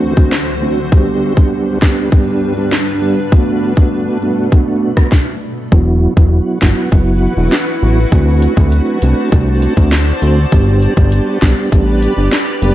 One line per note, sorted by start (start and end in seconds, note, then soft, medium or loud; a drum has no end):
0.00 0.90 D2 medium
0.00 0.90 D3 medium
0.00 0.13 A3 medium
0.00 0.14 C4 medium
0.00 0.14 D4 medium
0.00 0.14 F#4 loud
0.00 0.90 F#4 medium
0.00 0.90 C5 medium
0.17 0.35 A3 medium
0.17 0.35 C4 medium
0.17 0.35 D4 medium
0.17 0.35 F#4 medium
0.17 kick medium
0.32 snare loud
0.62 0.80 A3 medium
0.62 0.80 C4 medium
0.62 0.80 D4 medium
0.62 0.80 F#4 medium
0.92 3.30 G2 medium
0.92 1.34 G3 medium
0.92 3.30 G3 medium
0.92 1.34 B3 medium
0.92 5.08 D4 medium
0.92 1.34 D4 medium
0.92 1.34 G4 loud
0.92 5.08 B4 medium
0.92 kick loud
1.37 1.79 G3 medium
1.37 1.79 B3 medium
1.37 1.79 D4 medium
1.37 1.79 G4 medium
1.37 kick loud
1.82 2.10 G3 medium
1.82 2.10 B3 medium
1.82 2.10 D4 medium
1.82 2.10 G4 medium
1.82 kick loud
1.82 snare loud
2.12 2.53 G3 medium
2.12 2.54 B3 medium
2.12 2.54 D4 medium
2.12 2.54 G4 medium
2.12 kick medium
2.57 2.75 G3 medium
2.57 2.75 B3 medium
2.57 2.75 D4 medium
2.57 2.75 G4 medium
2.72 snare loud
3.02 3.20 G3 medium
3.02 3.20 B3 medium
3.02 3.20 D4 medium
3.02 3.20 G4 medium
3.32 5.10 B2 medium
3.32 3.73 A3 medium
3.32 5.10 A3 medium
3.32 3.73 B3 medium
3.32 3.73 D4 medium
3.32 3.74 F#4 loud
3.32 kick loud
3.77 4.18 A3 medium
3.77 4.18 B3 medium
3.77 4.18 D4 medium
3.77 4.19 F#4 medium
3.77 kick loud
4.22 4.50 A3 medium
4.22 4.50 B3 medium
4.22 4.50 D4 medium
4.22 4.50 F#4 medium
4.52 4.93 A3 medium
4.52 4.94 B3 medium
4.52 4.94 D4 medium
4.52 4.94 F#4 loud
4.52 kick medium
4.97 5.15 A3 medium
4.97 5.15 B3 medium
4.97 5.15 D4 medium
4.97 5.15 F#4 medium
4.97 kick medium
4.97 cross-stick medium
5.12 kick medium
5.12 snare medium
5.72 6.08 E1 loud
5.72 6.13 F#3 medium
5.72 6.13 B3 medium
5.72 6.13 E4 medium
5.72 8.10 E4 medium
5.72 6.14 F#4 loud
5.72 10.48 F#4 medium
5.72 8.10 B4 medium
5.72 8.10 F#5 medium
5.72 kick loud
6.17 6.41 E1 medium
6.17 6.58 F#3 medium
6.17 6.58 B3 medium
6.17 6.59 E4 medium
6.17 6.59 F#4 medium
6.17 kick loud
6.62 6.74 G1 medium
6.62 6.90 F#3 medium
6.62 6.90 B3 medium
6.62 6.90 E4 medium
6.62 6.90 F#4 medium
6.62 kick loud
6.62 snare loud
6.92 7.28 F#1 loud
6.92 7.33 F#3 medium
6.92 7.34 B3 medium
6.92 7.34 E4 medium
6.92 7.34 F#4 loud
6.92 kick medium
7.37 7.49 E1 loud
7.37 7.55 F#3 medium
7.37 7.55 B3 medium
7.37 7.55 E4 medium
7.37 7.55 F#4 medium
7.52 snare loud
7.82 8.06 A1 medium
7.82 8.00 F#3 medium
7.82 8.00 B3 medium
7.82 8.00 E4 medium
7.82 8.00 F#4 medium
8.12 8.48 D2 loud
8.12 8.53 A3 medium
8.12 8.54 C4 medium
8.12 8.54 D4 medium
8.12 8.54 F#4 loud
8.12 10.50 C5 medium
8.12 10.50 D5 medium
8.12 10.50 A5 medium
8.12 kick loud
8.12 closed hi-hat medium
8.42 closed hi-hat medium
8.57 8.81 D2 medium
8.57 8.98 A3 medium
8.57 8.99 C4 medium
8.57 8.99 D4 medium
8.57 8.99 F#4 medium
8.57 kick loud
8.72 closed hi-hat medium
9.02 9.14 C2 medium
9.02 9.30 A3 medium
9.02 9.30 C4 medium
9.02 9.30 D4 medium
9.02 9.30 F#4 medium
9.02 closed hi-hat medium
9.32 9.68 C2 medium
9.32 9.74 A3 medium
9.32 9.74 C4 medium
9.32 9.74 D4 medium
9.32 9.74 F#4 loud
9.32 kick loud
9.32 closed hi-hat medium
9.62 closed hi-hat medium
9.77 10.13 D2 loud
9.77 9.95 A3 medium
9.77 9.95 C4 medium
9.77 9.95 D4 medium
9.77 9.95 F#4 medium
9.77 kick medium
9.92 snare loud
9.92 closed hi-hat medium
10.07 closed hi-hat soft
10.22 10.46 D2 loud
10.22 10.40 A3 medium
10.22 10.40 C4 medium
10.22 10.40 D4 medium
10.22 10.40 F#4 medium
10.22 closed hi-hat medium
10.52 10.88 G1 loud
10.52 10.94 G3 medium
10.52 10.94 B3 medium
10.52 10.94 D4 medium
10.52 12.75 G4 medium
10.52 10.94 G4 loud
10.52 12.75 B4 medium
10.52 12.75 D5 medium
10.52 12.75 B5 medium
10.52 kick loud
10.52 closed hi-hat medium
10.82 closed hi-hat medium
10.97 11.21 G1 loud
10.97 11.39 G3 medium
10.97 11.39 B3 medium
10.97 11.39 D4 medium
10.97 11.39 G4 medium
10.97 kick medium
11.12 closed hi-hat medium
11.42 11.54 B1 medium
11.42 11.70 G3 medium
11.42 11.70 B3 medium
11.42 11.70 D4 medium
11.42 11.70 G4 medium
11.42 kick loud
11.42 snare loud
11.42 closed hi-hat medium
11.72 12.08 A1 loud
11.72 12.14 G3 medium
11.72 12.14 B3 medium
11.72 12.14 D4 medium
11.72 12.14 G4 loud
11.72 kick medium
11.72 closed hi-hat medium
12.02 closed hi-hat medium
12.17 12.29 G1 medium
12.17 12.35 G3 medium
12.17 12.35 B3 medium
12.17 12.35 D4 medium
12.17 12.35 G4 medium
12.32 snare loud
12.32 closed hi-hat medium
12.47 closed hi-hat soft
12.62 12.75 F#1 loud
12.62 12.75 G3 medium
12.62 12.75 B3 medium
12.62 12.75 D4 medium
12.62 12.75 G4 medium
12.62 closed hi-hat medium